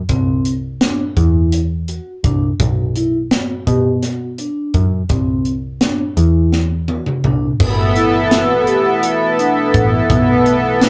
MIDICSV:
0, 0, Header, 1, 5, 480
1, 0, Start_track
1, 0, Tempo, 714286
1, 65, Time_signature, 7, 3, 24, 8
1, 7320, End_track
2, 0, Start_track
2, 0, Title_t, "Analog synth pad"
2, 0, Program_c, 0, 89
2, 5105, Note_on_c, 0, 59, 78
2, 5109, Note_on_c, 0, 64, 72
2, 5114, Note_on_c, 0, 69, 89
2, 6757, Note_off_c, 0, 59, 0
2, 6759, Note_off_c, 0, 64, 0
2, 6762, Note_off_c, 0, 69, 0
2, 6781, Note_on_c, 0, 59, 71
2, 6787, Note_on_c, 0, 64, 62
2, 6793, Note_on_c, 0, 69, 76
2, 7320, Note_off_c, 0, 59, 0
2, 7320, Note_off_c, 0, 64, 0
2, 7320, Note_off_c, 0, 69, 0
2, 7320, End_track
3, 0, Start_track
3, 0, Title_t, "Vibraphone"
3, 0, Program_c, 1, 11
3, 61, Note_on_c, 1, 60, 66
3, 326, Note_off_c, 1, 60, 0
3, 546, Note_on_c, 1, 62, 72
3, 678, Note_off_c, 1, 62, 0
3, 783, Note_on_c, 1, 64, 57
3, 1048, Note_off_c, 1, 64, 0
3, 1268, Note_on_c, 1, 66, 58
3, 1400, Note_off_c, 1, 66, 0
3, 1508, Note_on_c, 1, 62, 68
3, 1640, Note_off_c, 1, 62, 0
3, 1750, Note_on_c, 1, 66, 74
3, 1881, Note_off_c, 1, 66, 0
3, 1987, Note_on_c, 1, 64, 62
3, 2119, Note_off_c, 1, 64, 0
3, 2228, Note_on_c, 1, 66, 69
3, 2360, Note_off_c, 1, 66, 0
3, 2468, Note_on_c, 1, 67, 59
3, 2600, Note_off_c, 1, 67, 0
3, 2706, Note_on_c, 1, 66, 74
3, 2839, Note_off_c, 1, 66, 0
3, 2946, Note_on_c, 1, 62, 59
3, 3211, Note_off_c, 1, 62, 0
3, 3427, Note_on_c, 1, 60, 67
3, 3691, Note_off_c, 1, 60, 0
3, 3908, Note_on_c, 1, 62, 78
3, 4040, Note_off_c, 1, 62, 0
3, 4145, Note_on_c, 1, 64, 56
3, 4410, Note_off_c, 1, 64, 0
3, 4628, Note_on_c, 1, 66, 58
3, 4760, Note_off_c, 1, 66, 0
3, 4870, Note_on_c, 1, 62, 61
3, 5001, Note_off_c, 1, 62, 0
3, 5106, Note_on_c, 1, 66, 80
3, 5239, Note_off_c, 1, 66, 0
3, 5346, Note_on_c, 1, 64, 65
3, 5478, Note_off_c, 1, 64, 0
3, 5584, Note_on_c, 1, 66, 87
3, 5717, Note_off_c, 1, 66, 0
3, 5823, Note_on_c, 1, 67, 59
3, 5956, Note_off_c, 1, 67, 0
3, 6063, Note_on_c, 1, 66, 83
3, 6196, Note_off_c, 1, 66, 0
3, 6302, Note_on_c, 1, 62, 67
3, 6566, Note_off_c, 1, 62, 0
3, 6783, Note_on_c, 1, 59, 81
3, 7047, Note_off_c, 1, 59, 0
3, 7263, Note_on_c, 1, 62, 79
3, 7320, Note_off_c, 1, 62, 0
3, 7320, End_track
4, 0, Start_track
4, 0, Title_t, "Picked electric bass"
4, 0, Program_c, 2, 34
4, 63, Note_on_c, 2, 36, 81
4, 607, Note_off_c, 2, 36, 0
4, 785, Note_on_c, 2, 40, 69
4, 1328, Note_off_c, 2, 40, 0
4, 1506, Note_on_c, 2, 36, 70
4, 1687, Note_off_c, 2, 36, 0
4, 1746, Note_on_c, 2, 35, 82
4, 2290, Note_off_c, 2, 35, 0
4, 2466, Note_on_c, 2, 47, 70
4, 3010, Note_off_c, 2, 47, 0
4, 3188, Note_on_c, 2, 42, 65
4, 3369, Note_off_c, 2, 42, 0
4, 3425, Note_on_c, 2, 36, 81
4, 3969, Note_off_c, 2, 36, 0
4, 4146, Note_on_c, 2, 40, 73
4, 4689, Note_off_c, 2, 40, 0
4, 4869, Note_on_c, 2, 36, 66
4, 5050, Note_off_c, 2, 36, 0
4, 5108, Note_on_c, 2, 31, 84
4, 5830, Note_off_c, 2, 31, 0
4, 6547, Note_on_c, 2, 33, 67
4, 6727, Note_off_c, 2, 33, 0
4, 6786, Note_on_c, 2, 35, 87
4, 7320, Note_off_c, 2, 35, 0
4, 7320, End_track
5, 0, Start_track
5, 0, Title_t, "Drums"
5, 60, Note_on_c, 9, 42, 60
5, 63, Note_on_c, 9, 36, 87
5, 127, Note_off_c, 9, 42, 0
5, 130, Note_off_c, 9, 36, 0
5, 304, Note_on_c, 9, 42, 50
5, 371, Note_off_c, 9, 42, 0
5, 544, Note_on_c, 9, 38, 95
5, 544, Note_on_c, 9, 42, 67
5, 611, Note_off_c, 9, 38, 0
5, 611, Note_off_c, 9, 42, 0
5, 784, Note_on_c, 9, 36, 59
5, 784, Note_on_c, 9, 42, 47
5, 851, Note_off_c, 9, 36, 0
5, 851, Note_off_c, 9, 42, 0
5, 1024, Note_on_c, 9, 42, 72
5, 1091, Note_off_c, 9, 42, 0
5, 1264, Note_on_c, 9, 42, 50
5, 1332, Note_off_c, 9, 42, 0
5, 1505, Note_on_c, 9, 42, 56
5, 1506, Note_on_c, 9, 36, 74
5, 1573, Note_off_c, 9, 42, 0
5, 1574, Note_off_c, 9, 36, 0
5, 1745, Note_on_c, 9, 42, 69
5, 1746, Note_on_c, 9, 36, 89
5, 1813, Note_off_c, 9, 36, 0
5, 1813, Note_off_c, 9, 42, 0
5, 1987, Note_on_c, 9, 42, 50
5, 2054, Note_off_c, 9, 42, 0
5, 2226, Note_on_c, 9, 38, 96
5, 2226, Note_on_c, 9, 42, 69
5, 2293, Note_off_c, 9, 38, 0
5, 2293, Note_off_c, 9, 42, 0
5, 2467, Note_on_c, 9, 36, 63
5, 2468, Note_on_c, 9, 42, 48
5, 2534, Note_off_c, 9, 36, 0
5, 2535, Note_off_c, 9, 42, 0
5, 2705, Note_on_c, 9, 38, 29
5, 2705, Note_on_c, 9, 42, 66
5, 2772, Note_off_c, 9, 38, 0
5, 2772, Note_off_c, 9, 42, 0
5, 2946, Note_on_c, 9, 42, 50
5, 3013, Note_off_c, 9, 42, 0
5, 3185, Note_on_c, 9, 42, 49
5, 3187, Note_on_c, 9, 36, 69
5, 3252, Note_off_c, 9, 42, 0
5, 3254, Note_off_c, 9, 36, 0
5, 3423, Note_on_c, 9, 42, 60
5, 3426, Note_on_c, 9, 36, 83
5, 3490, Note_off_c, 9, 42, 0
5, 3493, Note_off_c, 9, 36, 0
5, 3663, Note_on_c, 9, 42, 45
5, 3730, Note_off_c, 9, 42, 0
5, 3903, Note_on_c, 9, 38, 91
5, 3903, Note_on_c, 9, 42, 72
5, 3971, Note_off_c, 9, 38, 0
5, 3971, Note_off_c, 9, 42, 0
5, 4146, Note_on_c, 9, 42, 49
5, 4213, Note_off_c, 9, 42, 0
5, 4385, Note_on_c, 9, 38, 48
5, 4452, Note_off_c, 9, 38, 0
5, 4624, Note_on_c, 9, 48, 55
5, 4692, Note_off_c, 9, 48, 0
5, 4747, Note_on_c, 9, 47, 55
5, 4814, Note_off_c, 9, 47, 0
5, 4866, Note_on_c, 9, 45, 73
5, 4933, Note_off_c, 9, 45, 0
5, 5107, Note_on_c, 9, 36, 93
5, 5107, Note_on_c, 9, 49, 88
5, 5174, Note_off_c, 9, 36, 0
5, 5175, Note_off_c, 9, 49, 0
5, 5347, Note_on_c, 9, 42, 59
5, 5414, Note_off_c, 9, 42, 0
5, 5586, Note_on_c, 9, 38, 92
5, 5586, Note_on_c, 9, 42, 79
5, 5654, Note_off_c, 9, 38, 0
5, 5654, Note_off_c, 9, 42, 0
5, 5827, Note_on_c, 9, 42, 55
5, 5894, Note_off_c, 9, 42, 0
5, 6068, Note_on_c, 9, 42, 77
5, 6135, Note_off_c, 9, 42, 0
5, 6311, Note_on_c, 9, 42, 53
5, 6378, Note_off_c, 9, 42, 0
5, 6547, Note_on_c, 9, 36, 84
5, 6549, Note_on_c, 9, 42, 57
5, 6614, Note_off_c, 9, 36, 0
5, 6616, Note_off_c, 9, 42, 0
5, 6786, Note_on_c, 9, 36, 101
5, 6788, Note_on_c, 9, 42, 64
5, 6854, Note_off_c, 9, 36, 0
5, 6855, Note_off_c, 9, 42, 0
5, 7029, Note_on_c, 9, 42, 51
5, 7096, Note_off_c, 9, 42, 0
5, 7267, Note_on_c, 9, 38, 107
5, 7267, Note_on_c, 9, 42, 67
5, 7320, Note_off_c, 9, 38, 0
5, 7320, Note_off_c, 9, 42, 0
5, 7320, End_track
0, 0, End_of_file